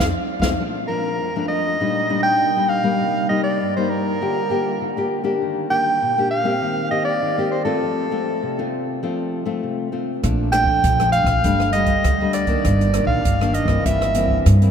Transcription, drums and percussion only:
0, 0, Header, 1, 2, 480
1, 0, Start_track
1, 0, Key_signature, -2, "major"
1, 0, Tempo, 602410
1, 477, Time_signature, 4, 2, 24, 8
1, 11720, End_track
2, 0, Start_track
2, 0, Title_t, "Drums"
2, 334, Note_on_c, 9, 36, 65
2, 335, Note_on_c, 9, 38, 67
2, 414, Note_off_c, 9, 36, 0
2, 415, Note_off_c, 9, 38, 0
2, 8156, Note_on_c, 9, 37, 58
2, 8156, Note_on_c, 9, 42, 56
2, 8157, Note_on_c, 9, 36, 58
2, 8236, Note_off_c, 9, 36, 0
2, 8236, Note_off_c, 9, 37, 0
2, 8236, Note_off_c, 9, 42, 0
2, 8386, Note_on_c, 9, 37, 68
2, 8386, Note_on_c, 9, 42, 48
2, 8466, Note_off_c, 9, 37, 0
2, 8466, Note_off_c, 9, 42, 0
2, 8496, Note_on_c, 9, 36, 61
2, 8576, Note_off_c, 9, 36, 0
2, 8636, Note_on_c, 9, 42, 66
2, 8637, Note_on_c, 9, 36, 86
2, 8716, Note_off_c, 9, 42, 0
2, 8717, Note_off_c, 9, 36, 0
2, 8763, Note_on_c, 9, 37, 62
2, 8763, Note_on_c, 9, 42, 27
2, 8843, Note_off_c, 9, 37, 0
2, 8843, Note_off_c, 9, 42, 0
2, 8866, Note_on_c, 9, 42, 45
2, 8946, Note_off_c, 9, 42, 0
2, 8976, Note_on_c, 9, 37, 65
2, 8976, Note_on_c, 9, 42, 28
2, 8978, Note_on_c, 9, 36, 69
2, 9055, Note_off_c, 9, 37, 0
2, 9055, Note_off_c, 9, 42, 0
2, 9057, Note_off_c, 9, 36, 0
2, 9116, Note_on_c, 9, 42, 58
2, 9118, Note_on_c, 9, 36, 60
2, 9195, Note_off_c, 9, 42, 0
2, 9197, Note_off_c, 9, 36, 0
2, 9243, Note_on_c, 9, 37, 64
2, 9322, Note_off_c, 9, 37, 0
2, 9344, Note_on_c, 9, 42, 44
2, 9424, Note_off_c, 9, 42, 0
2, 9454, Note_on_c, 9, 42, 30
2, 9457, Note_on_c, 9, 36, 68
2, 9533, Note_off_c, 9, 42, 0
2, 9536, Note_off_c, 9, 36, 0
2, 9596, Note_on_c, 9, 37, 65
2, 9596, Note_on_c, 9, 42, 58
2, 9598, Note_on_c, 9, 36, 73
2, 9676, Note_off_c, 9, 37, 0
2, 9676, Note_off_c, 9, 42, 0
2, 9677, Note_off_c, 9, 36, 0
2, 9826, Note_on_c, 9, 37, 59
2, 9826, Note_on_c, 9, 42, 46
2, 9905, Note_off_c, 9, 37, 0
2, 9905, Note_off_c, 9, 42, 0
2, 9936, Note_on_c, 9, 42, 29
2, 9938, Note_on_c, 9, 36, 68
2, 10015, Note_off_c, 9, 42, 0
2, 10017, Note_off_c, 9, 36, 0
2, 10078, Note_on_c, 9, 37, 61
2, 10078, Note_on_c, 9, 42, 60
2, 10079, Note_on_c, 9, 36, 61
2, 10157, Note_off_c, 9, 37, 0
2, 10157, Note_off_c, 9, 42, 0
2, 10159, Note_off_c, 9, 36, 0
2, 10207, Note_on_c, 9, 42, 30
2, 10287, Note_off_c, 9, 42, 0
2, 10308, Note_on_c, 9, 37, 68
2, 10308, Note_on_c, 9, 42, 47
2, 10388, Note_off_c, 9, 37, 0
2, 10388, Note_off_c, 9, 42, 0
2, 10419, Note_on_c, 9, 36, 60
2, 10498, Note_off_c, 9, 36, 0
2, 10560, Note_on_c, 9, 36, 82
2, 10560, Note_on_c, 9, 42, 68
2, 10639, Note_off_c, 9, 42, 0
2, 10640, Note_off_c, 9, 36, 0
2, 10688, Note_on_c, 9, 37, 66
2, 10767, Note_off_c, 9, 37, 0
2, 10791, Note_on_c, 9, 42, 48
2, 10871, Note_off_c, 9, 42, 0
2, 10899, Note_on_c, 9, 37, 61
2, 10900, Note_on_c, 9, 36, 67
2, 10978, Note_off_c, 9, 37, 0
2, 10979, Note_off_c, 9, 36, 0
2, 11041, Note_on_c, 9, 36, 65
2, 11042, Note_on_c, 9, 42, 65
2, 11120, Note_off_c, 9, 36, 0
2, 11122, Note_off_c, 9, 42, 0
2, 11169, Note_on_c, 9, 37, 65
2, 11169, Note_on_c, 9, 42, 28
2, 11249, Note_off_c, 9, 37, 0
2, 11249, Note_off_c, 9, 42, 0
2, 11272, Note_on_c, 9, 42, 52
2, 11352, Note_off_c, 9, 42, 0
2, 11380, Note_on_c, 9, 36, 65
2, 11460, Note_off_c, 9, 36, 0
2, 11521, Note_on_c, 9, 36, 79
2, 11523, Note_on_c, 9, 37, 66
2, 11523, Note_on_c, 9, 42, 67
2, 11601, Note_off_c, 9, 36, 0
2, 11602, Note_off_c, 9, 37, 0
2, 11602, Note_off_c, 9, 42, 0
2, 11648, Note_on_c, 9, 42, 33
2, 11720, Note_off_c, 9, 42, 0
2, 11720, End_track
0, 0, End_of_file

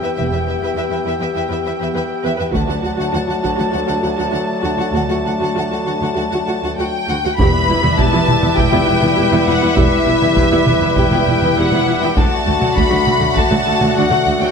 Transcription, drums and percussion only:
0, 0, Header, 1, 2, 480
1, 0, Start_track
1, 0, Key_signature, 1, "minor"
1, 0, Tempo, 592885
1, 142, Time_signature, 4, 2, 24, 8
1, 3021, Tempo, 610376
1, 5901, Tempo, 595829
1, 11636, End_track
2, 0, Start_track
2, 0, Title_t, "Taiko and cinematic ensemble drums"
2, 2067, Note_on_c, 9, 41, 57
2, 2148, Note_off_c, 9, 41, 0
2, 2790, Note_on_c, 9, 41, 33
2, 2871, Note_off_c, 9, 41, 0
2, 5902, Note_on_c, 9, 41, 92
2, 5982, Note_off_c, 9, 41, 0
2, 6262, Note_on_c, 9, 47, 52
2, 6342, Note_off_c, 9, 47, 0
2, 6377, Note_on_c, 9, 41, 81
2, 6458, Note_off_c, 9, 41, 0
2, 6617, Note_on_c, 9, 47, 52
2, 6698, Note_off_c, 9, 47, 0
2, 6734, Note_on_c, 9, 47, 45
2, 6814, Note_off_c, 9, 47, 0
2, 6851, Note_on_c, 9, 41, 73
2, 6931, Note_off_c, 9, 41, 0
2, 6974, Note_on_c, 9, 47, 50
2, 7054, Note_off_c, 9, 47, 0
2, 7215, Note_on_c, 9, 47, 55
2, 7295, Note_off_c, 9, 47, 0
2, 7460, Note_on_c, 9, 47, 40
2, 7541, Note_off_c, 9, 47, 0
2, 7816, Note_on_c, 9, 41, 101
2, 7897, Note_off_c, 9, 41, 0
2, 8178, Note_on_c, 9, 47, 47
2, 8259, Note_off_c, 9, 47, 0
2, 8294, Note_on_c, 9, 41, 76
2, 8374, Note_off_c, 9, 41, 0
2, 8538, Note_on_c, 9, 47, 58
2, 8618, Note_off_c, 9, 47, 0
2, 8659, Note_on_c, 9, 47, 43
2, 8740, Note_off_c, 9, 47, 0
2, 8777, Note_on_c, 9, 41, 74
2, 8857, Note_off_c, 9, 41, 0
2, 8896, Note_on_c, 9, 47, 47
2, 8977, Note_off_c, 9, 47, 0
2, 9145, Note_on_c, 9, 47, 50
2, 9225, Note_off_c, 9, 47, 0
2, 9381, Note_on_c, 9, 47, 45
2, 9462, Note_off_c, 9, 47, 0
2, 9748, Note_on_c, 9, 41, 97
2, 9829, Note_off_c, 9, 41, 0
2, 10109, Note_on_c, 9, 47, 46
2, 10190, Note_off_c, 9, 47, 0
2, 10232, Note_on_c, 9, 41, 74
2, 10313, Note_off_c, 9, 41, 0
2, 10472, Note_on_c, 9, 47, 55
2, 10553, Note_off_c, 9, 47, 0
2, 10591, Note_on_c, 9, 47, 42
2, 10671, Note_off_c, 9, 47, 0
2, 10710, Note_on_c, 9, 41, 66
2, 10791, Note_off_c, 9, 41, 0
2, 10832, Note_on_c, 9, 47, 43
2, 10913, Note_off_c, 9, 47, 0
2, 11069, Note_on_c, 9, 47, 48
2, 11150, Note_off_c, 9, 47, 0
2, 11313, Note_on_c, 9, 47, 45
2, 11394, Note_off_c, 9, 47, 0
2, 11636, End_track
0, 0, End_of_file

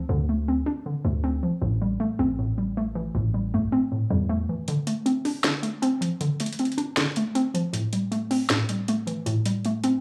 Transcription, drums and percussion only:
0, 0, Header, 1, 2, 480
1, 0, Start_track
1, 0, Key_signature, -1, "minor"
1, 0, Tempo, 382166
1, 116, Time_signature, 4, 2, 24, 8
1, 12568, End_track
2, 0, Start_track
2, 0, Title_t, "Drums"
2, 5875, Note_on_c, 9, 42, 74
2, 6001, Note_off_c, 9, 42, 0
2, 6116, Note_on_c, 9, 42, 80
2, 6242, Note_off_c, 9, 42, 0
2, 6356, Note_on_c, 9, 42, 64
2, 6482, Note_off_c, 9, 42, 0
2, 6595, Note_on_c, 9, 46, 52
2, 6721, Note_off_c, 9, 46, 0
2, 6834, Note_on_c, 9, 42, 69
2, 6836, Note_on_c, 9, 38, 114
2, 6959, Note_off_c, 9, 42, 0
2, 6961, Note_off_c, 9, 38, 0
2, 7074, Note_on_c, 9, 42, 70
2, 7200, Note_off_c, 9, 42, 0
2, 7317, Note_on_c, 9, 42, 80
2, 7442, Note_off_c, 9, 42, 0
2, 7559, Note_on_c, 9, 42, 73
2, 7685, Note_off_c, 9, 42, 0
2, 7796, Note_on_c, 9, 42, 74
2, 7922, Note_off_c, 9, 42, 0
2, 8036, Note_on_c, 9, 42, 74
2, 8117, Note_off_c, 9, 42, 0
2, 8117, Note_on_c, 9, 42, 69
2, 8196, Note_off_c, 9, 42, 0
2, 8196, Note_on_c, 9, 42, 63
2, 8276, Note_off_c, 9, 42, 0
2, 8276, Note_on_c, 9, 42, 57
2, 8356, Note_off_c, 9, 42, 0
2, 8356, Note_on_c, 9, 42, 52
2, 8437, Note_off_c, 9, 42, 0
2, 8437, Note_on_c, 9, 42, 43
2, 8516, Note_off_c, 9, 42, 0
2, 8516, Note_on_c, 9, 42, 67
2, 8641, Note_off_c, 9, 42, 0
2, 8754, Note_on_c, 9, 42, 73
2, 8756, Note_on_c, 9, 38, 114
2, 8879, Note_off_c, 9, 42, 0
2, 8882, Note_off_c, 9, 38, 0
2, 8994, Note_on_c, 9, 42, 69
2, 9119, Note_off_c, 9, 42, 0
2, 9235, Note_on_c, 9, 42, 79
2, 9361, Note_off_c, 9, 42, 0
2, 9479, Note_on_c, 9, 42, 78
2, 9604, Note_off_c, 9, 42, 0
2, 9715, Note_on_c, 9, 42, 77
2, 9841, Note_off_c, 9, 42, 0
2, 9956, Note_on_c, 9, 42, 82
2, 10082, Note_off_c, 9, 42, 0
2, 10197, Note_on_c, 9, 42, 63
2, 10322, Note_off_c, 9, 42, 0
2, 10435, Note_on_c, 9, 46, 52
2, 10560, Note_off_c, 9, 46, 0
2, 10672, Note_on_c, 9, 42, 74
2, 10675, Note_on_c, 9, 38, 116
2, 10798, Note_off_c, 9, 42, 0
2, 10800, Note_off_c, 9, 38, 0
2, 10913, Note_on_c, 9, 42, 69
2, 11039, Note_off_c, 9, 42, 0
2, 11156, Note_on_c, 9, 42, 80
2, 11281, Note_off_c, 9, 42, 0
2, 11397, Note_on_c, 9, 42, 69
2, 11523, Note_off_c, 9, 42, 0
2, 11635, Note_on_c, 9, 42, 75
2, 11760, Note_off_c, 9, 42, 0
2, 11876, Note_on_c, 9, 42, 74
2, 12001, Note_off_c, 9, 42, 0
2, 12115, Note_on_c, 9, 42, 63
2, 12241, Note_off_c, 9, 42, 0
2, 12353, Note_on_c, 9, 42, 66
2, 12479, Note_off_c, 9, 42, 0
2, 12568, End_track
0, 0, End_of_file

